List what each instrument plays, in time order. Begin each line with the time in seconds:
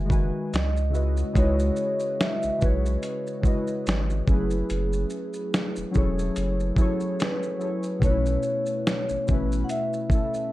Already playing: sub bass F#1, synth keys D#3 G#3 F#4 B4 G#5, vibraphone E5
0.05 synth keys D#3 G#3 F#4
0.10 synth keys B4 G#5, kick, shaker
0.53 sub bass C#2, vibraphone D#5, snare, closed hi-hat, shaker
0.77 shaker
0.90 synth keys C#3 G#3 E4
0.94 synth keys F#4 B4 D#5, shaker
1.17 shaker
1.33 sub bass C#2, synth keys C#3 G#3 D#4, vibraphone C#5, kick, closed hi-hat, shaker
1.37 synth keys F#4 B4 D#5
1.42 synth keys E4
1.59 shaker
1.76 shaker
2.00 shaker
2.20 vibraphone E5, snare, closed hi-hat, shaker
2.43 sub bass B1, shaker
2.58 synth keys C#3 G#3 E4, vibraphone B4, shaker
2.62 sub bass B1, synth keys F#4 B4 C#5, kick
2.86 shaker
3.03 closed hi-hat, shaker
3.27 shaker
3.41 synth keys C#3 G#3 E4 F#4, kick, shaker
3.46 synth keys B4 D#5
3.67 shaker
3.87 sub bass G#1, snare, closed hi-hat, shaker
4.10 shaker
4.27 sub bass F#1, synth keys F#3 C#4 E4 G#4, vibraphone G#4, kick, shaker
4.32 synth keys A3 B4
4.51 shaker
4.70 sub bass F#1, closed hi-hat, shaker
4.93 shaker
5.10 shaker
5.33 shaker
5.54 snare, closed hi-hat, shaker
5.76 sub bass E1, shaker
5.91 synth keys F#3 C#4 E4, shaker
5.95 sub bass E1, synth keys G#4 A4 C#5, kick
6.19 shaker
6.36 sub bass F#1, closed hi-hat, shaker
6.60 shaker
6.75 synth keys F#3 C#4 E4 G#4, kick, shaker
6.80 synth keys A4 C#5
7.00 shaker
7.20 vibraphone B4, snare, closed hi-hat, shaker
7.43 shaker
7.58 synth keys F#3 C#4 E4 G#4, shaker
7.63 synth keys A4 C#5
7.83 shaker
7.99 sub bass B1, synth keys B2 A3 C#4, vibraphone C#5, kick, closed hi-hat, shaker
8.04 synth keys D#4 B4
8.11 synth keys E4
8.26 shaker
8.43 shaker
8.66 shaker
8.87 snare, closed hi-hat, shaker
9.09 sub bass A1, shaker
9.27 sub bass A1, synth keys B2 A3 C#4, kick, shaker
9.32 synth keys E4 B4
9.52 shaker
9.64 vibraphone F#5
9.69 vibraphone E5, closed hi-hat, shaker
9.93 shaker
10.08 synth keys B2 A3 C#4, kick, shaker
10.13 synth keys E4 A4
10.34 shaker